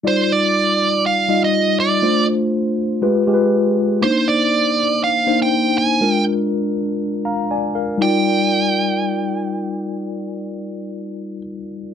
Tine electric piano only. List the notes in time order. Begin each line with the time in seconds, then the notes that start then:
0.03 G3 D#4 F4 D5
1.28 G3 D#4 F4 D#5
2.02 A3 D4 F4 C5
3.02 G#3 F4 G4 B4
3.27 G#3 F4 G4 G#4
3.34 B4
4.02 A#3 D4 D#4 C5
5.26 A#3 D4 D#4 C5
6.00 G#3 D4 F4 A#4
7.25 F5 A#5
7.51 D5 G#5
7.75 A#4 F5
7.97 G3 D#4 F4
8.02 D5